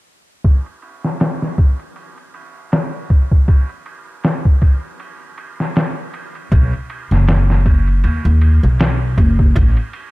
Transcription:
0.44 kick medium
0.44 ride medium
0.66 ride soft
0.82 ride medium
1.04 snare soft
1.20 snare loud
1.20 ride medium
1.42 snare soft
1.58 kick medium
1.58 ride medium
1.79 ride soft
1.96 ride medium
2.18 ride soft
2.34 ride medium
2.72 snare loud
2.72 ride medium
3.10 kick medium
3.10 ride medium
3.32 kick medium
3.48 kick loud
3.48 ride medium
3.69 ride soft
3.86 ride medium
4.24 snare loud
4.24 ride medium
4.45 kick medium
4.62 kick medium
4.62 ride medium
5.00 ride medium
5.38 ride medium
5.60 snare soft
5.76 snare loud
5.76 ride medium
6.14 ride medium
6.35 ride soft
6.52 6.71 B1 medium
6.52 kick loud
6.52 ride medium
6.73 ride soft
6.90 ride medium
7.11 8.01 F#1 medium
7.11 snare soft
7.28 snare loud
7.28 ride medium
7.50 snare soft
7.66 kick medium
7.66 ride medium
7.87 ride soft
8.04 8.23 D#2 medium
8.04 ride medium
8.25 8.58 D#2 medium
8.25 ride soft
8.41 ride medium
8.63 9.15 B1 medium
8.80 snare loud
8.80 ride medium
9.18 9.52 F#1 medium
9.18 kick medium
9.18 ride medium
9.39 kick medium
9.56 9.75 A1 loud
9.56 kick loud
9.56 ride medium
9.77 ride soft
9.93 ride medium

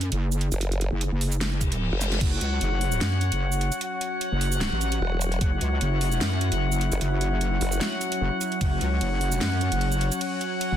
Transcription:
0.00 0.10 F#2 medium
0.00 closed hi-hat medium
0.12 0.50 F#1 loud
0.12 closed hi-hat medium
0.32 shaker medium
0.41 closed hi-hat medium
0.52 0.90 F#1 loud
0.52 closed hi-hat soft
0.52 shaker medium
0.61 closed hi-hat medium
0.72 closed hi-hat soft
0.81 closed hi-hat medium
0.92 1.10 F#1 loud
1.01 closed hi-hat medium
1.12 1.90 F#1 loud
1.21 open hi-hat loud
1.32 shaker medium
1.41 snare loud
1.41 closed hi-hat medium
1.41 reverse cymbal medium
1.61 kick medium
1.61 closed hi-hat medium
1.61 shaker medium
1.72 closed hi-hat medium
1.92 2.20 F#1 loud
2.01 snare medium
2.01 closed hi-hat medium
2.01 shaker medium
2.12 snare medium
2.12 closed hi-hat soft
2.21 2.40 F#1 medium
2.21 10.77 F#3 medium
2.21 10.77 C#4 medium
2.21 5.40 F#4 medium
2.21 3.79 F#4 loud
2.21 3.79 C#5 loud
2.21 3.79 F#5 loud
2.21 kick loud
2.21 closed hi-hat medium
2.21 crash medium
2.41 2.60 C#2 loud
2.41 closed hi-hat medium
2.61 3.00 F#1 loud
2.61 closed hi-hat medium
2.81 open hi-hat medium
2.92 shaker medium
3.01 3.30 F#2 loud
3.01 snare loud
3.01 closed hi-hat medium
3.21 closed hi-hat medium
3.32 3.70 F#1 loud
3.32 closed hi-hat medium
3.52 shaker medium
3.61 closed hi-hat medium
3.72 closed hi-hat soft
3.72 shaker medium
3.81 5.39 F#4 loud
3.81 5.39 C#5 loud
3.81 5.39 F#5 loud
3.81 closed hi-hat medium
4.01 closed hi-hat medium
4.21 closed hi-hat medium
4.32 4.70 F#1 loud
4.41 open hi-hat medium
4.52 shaker medium
4.61 snare loud
4.61 closed hi-hat medium
4.72 5.00 A1 loud
4.81 closed hi-hat medium
4.81 shaker medium
4.92 closed hi-hat medium
5.01 5.40 E1 loud
5.21 closed hi-hat medium
5.21 shaker medium
5.32 closed hi-hat soft
5.41 5.60 F#1 medium
5.41 8.60 E4 medium
5.41 6.99 F#4 loud
5.41 6.99 C#5 loud
5.41 6.99 F#5 loud
5.41 kick loud
5.41 closed hi-hat medium
5.61 5.80 C#2 loud
5.61 closed hi-hat medium
5.81 6.20 F#1 loud
5.81 closed hi-hat medium
6.01 open hi-hat medium
6.12 shaker medium
6.21 6.50 F#2 loud
6.21 snare loud
6.21 closed hi-hat medium
6.41 closed hi-hat medium
6.52 6.90 F#1 loud
6.52 closed hi-hat medium
6.72 shaker medium
6.81 closed hi-hat medium
6.92 7.00 F#1 loud
6.92 closed hi-hat soft
6.92 shaker medium
7.01 7.60 F#1 loud
7.01 8.59 F#4 loud
7.01 8.59 C#5 loud
7.01 8.59 F#5 loud
7.01 closed hi-hat medium
7.21 closed hi-hat medium
7.41 closed hi-hat medium
7.61 7.80 F#1 loud
7.61 open hi-hat medium
7.72 shaker medium
7.81 snare loud
7.81 closed hi-hat medium
8.01 closed hi-hat medium
8.01 shaker medium
8.12 closed hi-hat medium
8.21 8.30 F#1 loud
8.41 closed hi-hat medium
8.41 shaker medium
8.52 closed hi-hat soft
8.61 8.80 F#1 medium
8.61 10.77 F#4 medium
8.61 10.19 F#4 loud
8.61 10.19 C#5 medium
8.61 10.19 F#5 loud
8.61 kick loud
8.61 closed hi-hat medium
8.61 ride medium
8.81 9.00 C#2 loud
8.81 closed hi-hat medium
9.01 9.40 F#1 loud
9.01 closed hi-hat medium
9.01 ride soft
9.21 open hi-hat medium
9.32 shaker medium
9.41 9.70 F#2 medium
9.41 snare loud
9.41 closed hi-hat medium
9.41 ride medium
9.61 closed hi-hat medium
9.72 10.10 F#1 loud
9.72 closed hi-hat medium
9.81 ride soft
9.92 shaker medium
10.01 closed hi-hat medium
10.12 closed hi-hat soft
10.12 shaker medium
10.21 10.77 F#4 loud
10.21 10.77 C#5 loud
10.21 10.77 F#5 loud
10.21 closed hi-hat medium
10.21 ride medium
10.41 closed hi-hat medium
10.61 closed hi-hat medium
10.61 ride soft
10.72 10.77 F#1 loud

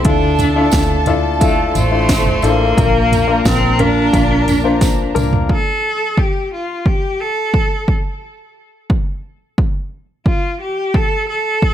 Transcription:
0.05 0.69 D2 medium
0.05 1.03 D3 medium
0.05 0.48 D4 medium
0.05 1.03 D4 medium
0.05 0.48 E4 medium
0.05 0.48 F4 medium
0.05 0.48 A4 medium
0.05 1.72 A4 medium
0.05 1.72 A5 medium
0.05 kick loud
0.05 closed hi-hat loud
0.39 closed hi-hat medium
0.39 floor tom medium
0.39 tambourine soft
0.55 0.99 D4 medium
0.55 0.99 E4 medium
0.55 0.99 F4 medium
0.55 0.99 A4 medium
0.71 1.71 D2 medium
0.71 kick loud
0.71 snare loud
0.71 closed hi-hat medium
0.71 tambourine medium
1.06 1.36 D4 medium
1.06 1.36 E4 medium
1.06 1.36 F4 medium
1.06 1.36 A4 medium
1.06 closed hi-hat medium
1.06 floor tom medium
1.06 tambourine soft
1.40 1.73 A3 medium
1.40 1.84 D4 medium
1.40 1.83 E4 medium
1.40 1.83 F4 medium
1.40 1.84 A4 medium
1.40 kick loud
1.40 closed hi-hat medium
1.40 tambourine soft
1.73 2.39 A1 loud
1.73 2.45 A3 medium
1.73 2.74 C5 medium
1.73 2.75 C6 loud
1.73 closed hi-hat medium
1.73 floor tom medium
1.73 tambourine medium
1.92 2.35 D4 medium
1.92 2.35 E4 medium
1.92 2.35 F4 medium
1.92 2.35 C5 medium
2.09 kick loud
2.09 snare loud
2.09 closed hi-hat medium
2.09 tambourine medium
2.26 floor tom medium
2.42 2.75 A1 medium
2.42 3.45 A#3 loud
2.42 2.71 D4 medium
2.42 2.71 E4 medium
2.42 2.72 F4 medium
2.42 2.72 A4 medium
2.42 closed hi-hat medium
2.42 tambourine medium
2.76 3.41 A#1 medium
2.76 3.75 A#2 medium
2.76 3.20 A#3 medium
2.76 3.20 D4 medium
2.76 3.20 F4 medium
2.76 5.45 A#4 medium
2.76 3.20 A#4 medium
2.76 5.45 A#5 medium
2.76 kick loud
2.76 closed hi-hat loud
2.76 tambourine soft
3.12 closed hi-hat medium
3.12 floor tom medium
3.12 tambourine soft
3.28 3.71 A#3 medium
3.28 3.71 D4 medium
3.28 3.71 F4 medium
3.28 3.71 A#4 medium
3.45 4.10 A#1 medium
3.45 3.81 C4 loud
3.45 kick loud
3.45 snare loud
3.45 closed hi-hat medium
3.45 tambourine medium
3.79 4.08 A#3 medium
3.79 5.16 D4 loud
3.79 4.08 D4 medium
3.79 4.08 F4 medium
3.79 4.08 A#4 medium
3.79 closed hi-hat medium
3.79 floor tom medium
4.13 5.12 A#1 medium
4.13 4.56 A#3 medium
4.13 4.56 D4 medium
4.13 4.56 F4 medium
4.13 4.56 A#4 medium
4.13 kick loud
4.13 closed hi-hat medium
4.13 tambourine soft
4.48 closed hi-hat medium
4.48 floor tom medium
4.48 tambourine medium
4.64 5.07 A#3 medium
4.64 5.07 D4 medium
4.64 5.07 F4 medium
4.64 5.07 C5 medium
4.81 kick loud
4.81 snare medium
4.81 closed hi-hat medium
4.81 tambourine medium
5.15 5.47 C2 medium
5.15 5.44 A#3 medium
5.15 5.44 D4 medium
5.15 5.44 F4 medium
5.15 5.44 A#4 loud
5.15 closed hi-hat medium
5.15 mid tom medium
5.15 tambourine medium
5.33 floor tom medium
5.49 6.20 A4 medium
5.49 kick medium
6.17 6.52 G4 medium
6.17 kick medium
6.54 6.88 F4 medium
6.86 7.22 G4 medium
6.86 kick medium
7.21 7.88 A4 medium
7.54 kick medium
7.88 kick medium
8.90 kick medium
9.58 kick medium
10.26 10.58 F4 medium
10.26 kick medium
10.61 10.97 G4 medium
10.94 11.28 A4 medium
10.94 kick medium
11.29 11.74 A4 medium
11.62 kick medium

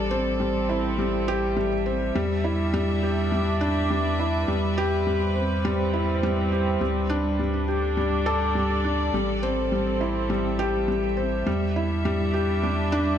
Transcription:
0.00 2.12 A1 medium
0.00 0.40 G3 medium
0.00 13.18 G3 medium
0.00 2.15 C4 medium
0.00 0.75 D4 medium
0.00 2.93 A4 medium
0.00 0.76 D5 medium
0.11 0.38 C4 loud
0.40 0.68 G3 medium
0.69 0.97 E4 medium
0.87 7.51 E5 medium
0.98 1.26 G3 medium
1.28 1.55 G4 loud
1.56 1.73 G3 medium
1.86 2.13 C4 medium
2.15 4.45 E2 medium
2.15 2.32 G3 loud
2.32 5.42 D4 medium
2.44 2.72 E4 medium
2.74 3.01 G3 loud
3.03 3.30 G4 medium
3.20 7.74 B4 medium
3.32 3.59 G3 medium
3.61 3.88 D4 loud
3.90 4.18 G3 medium
4.19 4.47 E4 medium
4.48 6.78 E2 medium
4.48 4.76 G3 medium
4.78 5.05 G4 loud
4.93 7.75 C4 medium
5.07 5.23 G3 medium
5.35 5.63 C4 medium
5.65 5.81 G3 loud
5.93 6.21 E4 medium
6.23 6.51 G3 loud
6.52 6.80 G4 medium
6.81 9.11 D2 medium
6.81 7.09 G3 medium
6.96 10.07 D4 medium
7.10 7.37 D4 loud
7.39 7.67 G3 medium
7.68 7.96 G4 medium
7.74 12.34 A4 medium
7.74 10.07 D5 medium
7.97 8.25 G3 medium
8.26 8.54 A4 loud
8.55 8.72 G3 medium
8.84 9.12 D4 medium
9.13 11.44 A1 medium
9.13 9.42 G3 medium
9.38 11.47 C4 medium
9.43 9.71 C4 loud
9.72 10.00 G3 medium
10.01 10.29 E4 medium
10.18 13.18 E5 medium
10.30 10.58 G3 medium
10.59 10.87 G4 loud
10.88 11.05 G3 medium
11.17 11.45 C4 medium
11.46 13.18 E2 medium
11.46 11.63 G3 loud
11.60 13.18 D4 medium
11.76 12.04 E4 medium
12.05 12.33 G3 loud
12.34 12.62 G4 medium
12.47 13.18 B4 medium
12.63 12.91 G3 medium
12.92 13.18 D4 loud

